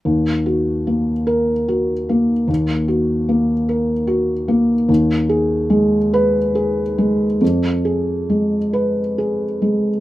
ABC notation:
X:1
M:6/8
L:1/8
Q:3/8=48
K:Ebm
V:1 name="Felt piano"
z3 B2 z | z6 | z3 c2 z | z3 c2 z |]
V:2 name="Felt piano"
E,, G B,2 G B, | E,, G B, B G B, | E,, A A,2 A A, | F,, A A,2 A A, |]